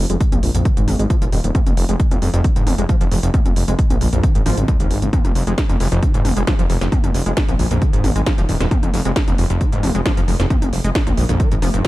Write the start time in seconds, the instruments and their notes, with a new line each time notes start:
0.10 detuned saw bass F1, acid bass G#3, closed hi-hat
0.21 kick, closed hi-hat
0.32 detuned saw bass A#1, acid bass F2, closed hi-hat, mid tom
0.43 detuned saw bass A#1, acid bass F2, open hi-hat
0.55 detuned saw bass A#1, acid bass F2, closed hi-hat
0.65 acid bass D#3, kick, closed hi-hat
0.77 detuned saw bass G#1, acid bass G#2, closed hi-hat
0.88 detuned saw bass G#1, acid bass D#2, open hi-hat, mid tom
0.99 detuned saw bass G#1, acid bass G#3, closed hi-hat
1.10 acid bass F3, kick, closed hi-hat
1.22 detuned saw bass D#1, acid bass F3, closed hi-hat
1.32 detuned saw bass D#1, acid bass F2, open hi-hat
1.44 detuned saw bass D#1, acid bass F2, closed hi-hat
1.55 acid bass F2, kick, closed hi-hat, mid tom
1.66 detuned saw bass F1, closed hi-hat, mid tom
1.77 detuned saw bass F1, open hi-hat
1.89 detuned saw bass F1, acid bass G#3, closed hi-hat
2.00 kick, closed hi-hat
2.11 detuned saw bass F1, acid bass F2, closed hi-hat, mid tom
2.22 detuned saw bass F1, acid bass F2, open hi-hat
2.34 detuned saw bass F1, acid bass F2, closed hi-hat
2.44 acid bass D#3, kick, closed hi-hat
2.56 detuned saw bass F1, acid bass G#2, closed hi-hat
2.67 detuned saw bass F1, acid bass D#2, open hi-hat, mid tom
2.78 detuned saw bass F1, acid bass G#3, closed hi-hat
2.89 acid bass F3, kick, closed hi-hat
3.01 detuned saw bass F1, acid bass F3, closed hi-hat
3.12 detuned saw bass F1, acid bass F2, open hi-hat
3.23 detuned saw bass F1, acid bass F2, closed hi-hat
3.34 acid bass F2, kick, closed hi-hat, mid tom
3.46 detuned saw bass F1, closed hi-hat, mid tom
3.56 detuned saw bass F1, open hi-hat
3.68 detuned saw bass F1, acid bass G#3, closed hi-hat
3.79 kick, closed hi-hat
3.90 detuned saw bass A#1, acid bass F2, closed hi-hat, mid tom
4.01 detuned saw bass A#1, acid bass F2, open hi-hat
4.13 detuned saw bass A#1, acid bass F2, closed hi-hat
4.23 acid bass D#3, kick, closed hi-hat
4.35 detuned saw bass G#1, acid bass G#2, closed hi-hat
4.46 detuned saw bass G#1, acid bass F3, open hi-hat, mid tom
4.57 detuned saw bass G#1, acid bass C3, closed hi-hat
4.68 acid bass D#2, kick, closed hi-hat
4.80 detuned saw bass G#1, acid bass D#2, closed hi-hat
4.91 detuned saw bass G#1, acid bass G#2, open hi-hat
5.02 detuned saw bass G#1, acid bass D#3, closed hi-hat
5.13 acid bass F2, kick, closed hi-hat, mid tom
5.25 detuned saw bass F1, closed hi-hat, mid tom
5.35 detuned saw bass F1, open hi-hat
5.47 detuned saw bass F1, acid bass G#3, closed hi-hat
5.58 kick, snare, closed hi-hat
5.69 detuned saw bass F1, acid bass F2, closed hi-hat, mid tom
5.80 detuned saw bass F1, acid bass F2, open hi-hat
5.92 detuned saw bass F1, acid bass F2, closed hi-hat
6.03 acid bass D#3, kick, closed hi-hat
6.14 detuned saw bass F1, acid bass G#2, closed hi-hat
6.25 detuned saw bass F1, acid bass D#2, open hi-hat, mid tom
6.37 detuned saw bass F1, acid bass G#3, closed hi-hat
6.47 acid bass F3, kick, snare, closed hi-hat
6.59 detuned saw bass F1, acid bass F3, closed hi-hat
6.70 detuned saw bass F1, acid bass F2, open hi-hat
6.81 detuned saw bass F1, acid bass F2, snare, closed hi-hat
6.92 acid bass F2, kick, closed hi-hat, mid tom
7.04 detuned saw bass F1, closed hi-hat, mid tom
7.14 detuned saw bass F1, open hi-hat
7.26 detuned saw bass F1, acid bass G#3, closed hi-hat
7.37 kick, snare, closed hi-hat
7.49 detuned saw bass A#1, acid bass F2, closed hi-hat, mid tom
7.59 detuned saw bass A#1, acid bass F2, open hi-hat
7.71 detuned saw bass A#1, acid bass F2, closed hi-hat
7.82 acid bass D#3, kick, closed hi-hat
7.93 detuned saw bass G#1, acid bass G#2, closed hi-hat
8.04 detuned saw bass G#1, acid bass D#2, open hi-hat, mid tom
8.16 detuned saw bass G#1, acid bass G#3, closed hi-hat
8.26 acid bass F3, kick, snare, closed hi-hat
8.38 detuned saw bass D#1, acid bass F3, closed hi-hat
8.49 detuned saw bass D#1, acid bass F2, open hi-hat
8.60 detuned saw bass D#1, acid bass F2, snare, closed hi-hat
8.71 acid bass F2, kick, closed hi-hat, mid tom
8.83 detuned saw bass F1, closed hi-hat, mid tom
8.94 detuned saw bass F1, open hi-hat
9.05 detuned saw bass F1, acid bass G#3, closed hi-hat
9.16 kick, snare, closed hi-hat
9.28 detuned saw bass F1, acid bass F2, closed hi-hat, mid tom
9.38 detuned saw bass F1, acid bass F2, open hi-hat
9.50 detuned saw bass F1, acid bass F2, closed hi-hat
9.61 acid bass D#3, kick, closed hi-hat
9.72 detuned saw bass F1, acid bass G#2, closed hi-hat
9.83 detuned saw bass F1, acid bass D#2, open hi-hat, mid tom
9.95 detuned saw bass F1, acid bass G#3, closed hi-hat
10.06 acid bass F3, kick, snare, closed hi-hat
10.17 detuned saw bass F1, acid bass F3, closed hi-hat
10.28 detuned saw bass F1, acid bass F2, open hi-hat
10.40 detuned saw bass F1, acid bass F2, snare, closed hi-hat
10.50 acid bass F2, kick, closed hi-hat, mid tom
10.62 detuned saw bass F1, closed hi-hat, mid tom
10.73 detuned saw bass F1, open hi-hat
10.84 detuned saw bass F1, acid bass G#3, closed hi-hat
10.95 kick, snare, closed hi-hat
11.07 detuned saw bass A#1, acid bass F2, closed hi-hat, mid tom
11.17 detuned saw bass A#1, acid bass F2, open hi-hat
11.29 detuned saw bass A#1, acid bass F2, closed hi-hat
11.40 acid bass D#3, kick, closed hi-hat
11.52 detuned saw bass G#1, acid bass G#2, closed hi-hat
11.62 detuned saw bass F1, acid bass F3, open hi-hat, mid tom
11.74 detuned saw bass F1, acid bass G2, closed hi-hat
11.85 acid bass A#2, kick, snare, closed hi-hat